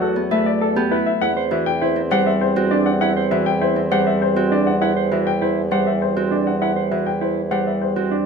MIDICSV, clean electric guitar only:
0, 0, Header, 1, 2, 480
1, 0, Start_track
1, 0, Tempo, 600000
1, 971, Time_signature, 3, 2, 24, 8
1, 6607, End_track
2, 0, Start_track
2, 0, Title_t, "Clean electric guitar"
2, 0, Program_c, 0, 27
2, 12, Note_on_c, 0, 66, 69
2, 168, Note_off_c, 0, 66, 0
2, 250, Note_on_c, 0, 71, 80
2, 407, Note_off_c, 0, 71, 0
2, 492, Note_on_c, 0, 69, 57
2, 612, Note_on_c, 0, 67, 80
2, 648, Note_off_c, 0, 69, 0
2, 730, Note_on_c, 0, 64, 69
2, 768, Note_off_c, 0, 67, 0
2, 887, Note_off_c, 0, 64, 0
2, 973, Note_on_c, 0, 64, 75
2, 1090, Note_off_c, 0, 64, 0
2, 1094, Note_on_c, 0, 72, 67
2, 1212, Note_on_c, 0, 66, 60
2, 1248, Note_off_c, 0, 72, 0
2, 1368, Note_off_c, 0, 66, 0
2, 1455, Note_on_c, 0, 64, 70
2, 1609, Note_off_c, 0, 64, 0
2, 1694, Note_on_c, 0, 72, 83
2, 1848, Note_off_c, 0, 72, 0
2, 2054, Note_on_c, 0, 66, 76
2, 2172, Note_on_c, 0, 62, 70
2, 2208, Note_off_c, 0, 66, 0
2, 2328, Note_off_c, 0, 62, 0
2, 2413, Note_on_c, 0, 64, 80
2, 2530, Note_off_c, 0, 64, 0
2, 2533, Note_on_c, 0, 72, 66
2, 2653, Note_on_c, 0, 66, 61
2, 2688, Note_off_c, 0, 72, 0
2, 2808, Note_off_c, 0, 66, 0
2, 2893, Note_on_c, 0, 64, 67
2, 3048, Note_off_c, 0, 64, 0
2, 3133, Note_on_c, 0, 72, 83
2, 3288, Note_off_c, 0, 72, 0
2, 3493, Note_on_c, 0, 66, 78
2, 3613, Note_on_c, 0, 62, 65
2, 3648, Note_off_c, 0, 66, 0
2, 3768, Note_off_c, 0, 62, 0
2, 3852, Note_on_c, 0, 64, 80
2, 3969, Note_off_c, 0, 64, 0
2, 3972, Note_on_c, 0, 72, 61
2, 4093, Note_on_c, 0, 66, 57
2, 4128, Note_off_c, 0, 72, 0
2, 4248, Note_off_c, 0, 66, 0
2, 4333, Note_on_c, 0, 64, 63
2, 4488, Note_off_c, 0, 64, 0
2, 4574, Note_on_c, 0, 72, 67
2, 4728, Note_off_c, 0, 72, 0
2, 4934, Note_on_c, 0, 66, 65
2, 5051, Note_on_c, 0, 62, 55
2, 5088, Note_off_c, 0, 66, 0
2, 5207, Note_off_c, 0, 62, 0
2, 5292, Note_on_c, 0, 64, 66
2, 5408, Note_off_c, 0, 64, 0
2, 5411, Note_on_c, 0, 72, 53
2, 5532, Note_on_c, 0, 66, 49
2, 5567, Note_off_c, 0, 72, 0
2, 5688, Note_off_c, 0, 66, 0
2, 5771, Note_on_c, 0, 64, 56
2, 5927, Note_off_c, 0, 64, 0
2, 6010, Note_on_c, 0, 72, 65
2, 6167, Note_off_c, 0, 72, 0
2, 6371, Note_on_c, 0, 66, 63
2, 6492, Note_on_c, 0, 62, 52
2, 6527, Note_off_c, 0, 66, 0
2, 6607, Note_off_c, 0, 62, 0
2, 6607, End_track
0, 0, End_of_file